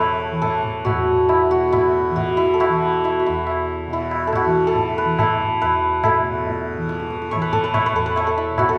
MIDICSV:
0, 0, Header, 1, 4, 480
1, 0, Start_track
1, 0, Tempo, 433526
1, 959, Time_signature, 4, 2, 24, 8
1, 4792, Tempo, 425230
1, 9819, End_track
2, 0, Start_track
2, 0, Title_t, "Santur"
2, 0, Program_c, 0, 15
2, 0, Note_on_c, 0, 64, 74
2, 0, Note_on_c, 0, 66, 83
2, 0, Note_on_c, 0, 69, 57
2, 0, Note_on_c, 0, 71, 92
2, 0, Note_on_c, 0, 73, 69
2, 437, Note_off_c, 0, 64, 0
2, 457, Note_off_c, 0, 69, 0
2, 461, Note_on_c, 0, 69, 92
2, 659, Note_off_c, 0, 66, 0
2, 937, Note_on_c, 0, 66, 82
2, 1427, Note_on_c, 0, 64, 74
2, 1666, Note_off_c, 0, 66, 0
2, 1670, Note_on_c, 0, 66, 79
2, 1905, Note_off_c, 0, 64, 0
2, 1909, Note_on_c, 0, 64, 84
2, 2386, Note_off_c, 0, 66, 0
2, 2390, Note_on_c, 0, 66, 72
2, 2620, Note_off_c, 0, 64, 0
2, 2624, Note_on_c, 0, 64, 84
2, 2736, Note_off_c, 0, 73, 0
2, 2806, Note_off_c, 0, 69, 0
2, 2810, Note_on_c, 0, 69, 63
2, 2875, Note_off_c, 0, 66, 0
2, 2880, Note_on_c, 0, 66, 85
2, 2995, Note_off_c, 0, 71, 0
2, 3369, Note_off_c, 0, 64, 0
2, 3374, Note_on_c, 0, 64, 74
2, 3534, Note_off_c, 0, 66, 0
2, 3539, Note_on_c, 0, 66, 49
2, 3609, Note_off_c, 0, 64, 0
2, 3613, Note_on_c, 0, 64, 69
2, 4347, Note_off_c, 0, 64, 0
2, 4352, Note_on_c, 0, 64, 79
2, 4727, Note_off_c, 0, 69, 0
2, 4732, Note_on_c, 0, 69, 64
2, 4817, Note_off_c, 0, 66, 0
2, 4821, Note_on_c, 0, 66, 86
2, 5174, Note_off_c, 0, 69, 0
2, 5179, Note_on_c, 0, 69, 93
2, 5527, Note_on_c, 0, 71, 87
2, 5765, Note_off_c, 0, 69, 0
2, 5770, Note_on_c, 0, 69, 86
2, 6241, Note_off_c, 0, 71, 0
2, 6246, Note_on_c, 0, 71, 90
2, 6726, Note_off_c, 0, 69, 0
2, 6730, Note_on_c, 0, 69, 74
2, 8161, Note_on_c, 0, 73, 84
2, 8274, Note_off_c, 0, 64, 0
2, 8274, Note_off_c, 0, 71, 0
2, 8278, Note_on_c, 0, 71, 85
2, 8399, Note_off_c, 0, 69, 0
2, 8404, Note_on_c, 0, 69, 95
2, 8484, Note_off_c, 0, 66, 0
2, 8523, Note_off_c, 0, 71, 0
2, 8527, Note_on_c, 0, 71, 92
2, 8641, Note_off_c, 0, 73, 0
2, 8646, Note_on_c, 0, 73, 97
2, 8775, Note_off_c, 0, 71, 0
2, 8780, Note_on_c, 0, 71, 93
2, 8885, Note_off_c, 0, 69, 0
2, 8890, Note_on_c, 0, 69, 85
2, 8999, Note_off_c, 0, 71, 0
2, 9004, Note_on_c, 0, 71, 87
2, 9126, Note_off_c, 0, 73, 0
2, 9131, Note_on_c, 0, 73, 93
2, 9235, Note_off_c, 0, 69, 0
2, 9240, Note_on_c, 0, 69, 78
2, 9362, Note_on_c, 0, 64, 77
2, 9602, Note_on_c, 0, 66, 83
2, 9711, Note_off_c, 0, 69, 0
2, 9715, Note_on_c, 0, 69, 81
2, 9819, Note_off_c, 0, 64, 0
2, 9819, Note_off_c, 0, 66, 0
2, 9819, Note_off_c, 0, 69, 0
2, 9819, Note_off_c, 0, 71, 0
2, 9819, Note_off_c, 0, 73, 0
2, 9819, End_track
3, 0, Start_track
3, 0, Title_t, "Tanpura"
3, 0, Program_c, 1, 104
3, 0, Note_on_c, 1, 40, 55
3, 0, Note_on_c, 1, 47, 54
3, 0, Note_on_c, 1, 52, 60
3, 352, Note_off_c, 1, 52, 0
3, 352, Note_on_c, 1, 52, 54
3, 1012, Note_off_c, 1, 40, 0
3, 1016, Note_on_c, 1, 40, 64
3, 1663, Note_off_c, 1, 47, 0
3, 1668, Note_on_c, 1, 47, 53
3, 2330, Note_off_c, 1, 52, 0
3, 2330, Note_on_c, 1, 52, 60
3, 2980, Note_off_c, 1, 52, 0
3, 2980, Note_on_c, 1, 52, 56
3, 3629, Note_off_c, 1, 40, 0
3, 3633, Note_on_c, 1, 40, 54
3, 4285, Note_off_c, 1, 47, 0
3, 4289, Note_on_c, 1, 47, 56
3, 4945, Note_off_c, 1, 52, 0
3, 4945, Note_on_c, 1, 52, 52
3, 5606, Note_off_c, 1, 52, 0
3, 5606, Note_on_c, 1, 52, 55
3, 6239, Note_off_c, 1, 40, 0
3, 6243, Note_on_c, 1, 40, 54
3, 6896, Note_off_c, 1, 47, 0
3, 6900, Note_on_c, 1, 47, 54
3, 7555, Note_off_c, 1, 52, 0
3, 7555, Note_on_c, 1, 52, 49
3, 8202, Note_off_c, 1, 52, 0
3, 8202, Note_on_c, 1, 52, 58
3, 8851, Note_off_c, 1, 40, 0
3, 8856, Note_on_c, 1, 40, 53
3, 9508, Note_off_c, 1, 47, 0
3, 9513, Note_on_c, 1, 47, 58
3, 9819, Note_off_c, 1, 40, 0
3, 9819, Note_off_c, 1, 47, 0
3, 9819, Note_off_c, 1, 52, 0
3, 9819, End_track
4, 0, Start_track
4, 0, Title_t, "Tabla"
4, 226, Note_on_c, 9, 60, 47
4, 337, Note_off_c, 9, 60, 0
4, 471, Note_on_c, 9, 60, 68
4, 471, Note_on_c, 9, 64, 58
4, 582, Note_off_c, 9, 60, 0
4, 582, Note_off_c, 9, 64, 0
4, 714, Note_on_c, 9, 64, 57
4, 824, Note_off_c, 9, 64, 0
4, 958, Note_on_c, 9, 60, 71
4, 958, Note_on_c, 9, 64, 70
4, 1069, Note_off_c, 9, 60, 0
4, 1069, Note_off_c, 9, 64, 0
4, 1432, Note_on_c, 9, 60, 72
4, 1543, Note_off_c, 9, 60, 0
4, 1921, Note_on_c, 9, 60, 75
4, 1921, Note_on_c, 9, 64, 67
4, 2032, Note_off_c, 9, 60, 0
4, 2032, Note_off_c, 9, 64, 0
4, 2406, Note_on_c, 9, 63, 67
4, 2406, Note_on_c, 9, 64, 63
4, 2517, Note_off_c, 9, 63, 0
4, 2517, Note_off_c, 9, 64, 0
4, 2887, Note_on_c, 9, 60, 76
4, 2998, Note_off_c, 9, 60, 0
4, 3127, Note_on_c, 9, 60, 59
4, 3238, Note_off_c, 9, 60, 0
4, 3368, Note_on_c, 9, 60, 67
4, 3479, Note_off_c, 9, 60, 0
4, 3840, Note_on_c, 9, 60, 76
4, 3951, Note_off_c, 9, 60, 0
4, 4319, Note_on_c, 9, 63, 64
4, 4429, Note_off_c, 9, 63, 0
4, 4555, Note_on_c, 9, 60, 63
4, 4666, Note_off_c, 9, 60, 0
4, 4792, Note_on_c, 9, 60, 76
4, 4792, Note_on_c, 9, 64, 69
4, 4905, Note_off_c, 9, 60, 0
4, 4905, Note_off_c, 9, 64, 0
4, 5274, Note_on_c, 9, 63, 68
4, 5274, Note_on_c, 9, 64, 61
4, 5387, Note_off_c, 9, 63, 0
4, 5387, Note_off_c, 9, 64, 0
4, 5761, Note_on_c, 9, 60, 81
4, 5761, Note_on_c, 9, 64, 72
4, 5874, Note_off_c, 9, 60, 0
4, 5874, Note_off_c, 9, 64, 0
4, 6002, Note_on_c, 9, 64, 48
4, 6115, Note_off_c, 9, 64, 0
4, 6245, Note_on_c, 9, 60, 65
4, 6358, Note_off_c, 9, 60, 0
4, 6721, Note_on_c, 9, 60, 95
4, 6721, Note_on_c, 9, 64, 91
4, 6833, Note_off_c, 9, 60, 0
4, 6833, Note_off_c, 9, 64, 0
4, 7207, Note_on_c, 9, 63, 68
4, 7207, Note_on_c, 9, 64, 59
4, 7320, Note_off_c, 9, 63, 0
4, 7320, Note_off_c, 9, 64, 0
4, 7687, Note_on_c, 9, 62, 77
4, 7800, Note_off_c, 9, 62, 0
4, 7806, Note_on_c, 9, 62, 54
4, 7919, Note_off_c, 9, 62, 0
4, 7927, Note_on_c, 9, 37, 50
4, 8040, Note_off_c, 9, 37, 0
4, 8056, Note_on_c, 9, 62, 53
4, 8169, Note_off_c, 9, 62, 0
4, 8177, Note_on_c, 9, 60, 63
4, 8177, Note_on_c, 9, 64, 60
4, 8290, Note_off_c, 9, 60, 0
4, 8290, Note_off_c, 9, 64, 0
4, 8406, Note_on_c, 9, 64, 54
4, 8519, Note_off_c, 9, 64, 0
4, 8644, Note_on_c, 9, 60, 76
4, 8644, Note_on_c, 9, 64, 65
4, 8757, Note_off_c, 9, 60, 0
4, 8757, Note_off_c, 9, 64, 0
4, 9119, Note_on_c, 9, 60, 65
4, 9232, Note_off_c, 9, 60, 0
4, 9590, Note_on_c, 9, 60, 82
4, 9590, Note_on_c, 9, 64, 62
4, 9703, Note_off_c, 9, 60, 0
4, 9703, Note_off_c, 9, 64, 0
4, 9819, End_track
0, 0, End_of_file